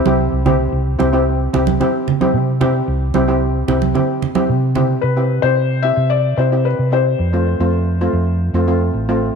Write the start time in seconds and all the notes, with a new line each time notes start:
Already playing: E4 C5
0.06 C2 C4 E4 G4, high conga
0.32 C2
0.46 C4 E4 G4, low conga
0.72 C2
0.99 C2 C4 E4 G4, high conga
1.13 C4 E4 G4
1.53 C2 C4 E4 G4, low conga
1.67 high conga
1.80 C4 E4 G4, low conga
2.08 low conga
2.21 C4 E4 G4, high conga
2.34 C3
2.61 C4 E4 G4, low conga
2.88 C2
3.14 C2 C4 E4 G4, high conga
3.28 C4 E4 G4
3.68 C2 C4 E4 G4, low conga
3.82 high conga
3.94 C4 E4 G4, low conga
4.22 low conga
4.35 C4 E4 G4, high conga
4.49 C3
4.75 C4 E4 G4, low conga
5.01 C3 B4
5.17 C4 E4 G4
5.42 C3 C4 E4 G4 C5
5.82 C4 E4 G4 E5
5.97 C3
6.10 D5
6.37 C3 C4 E4 G4 C5
6.52 C4 E4 G4
6.65 B4
6.79 C3
6.92 C4 E4 G4 C5
7.19 F2
7.33 A3 C4 F4
7.59 F2 A3 C4 F4
8.01 A3 C4 F4
8.13 F2
8.53 F2 A3 C4 F4
8.67 A3 C4 F4
8.94 A1
9.09 A3 C4 F4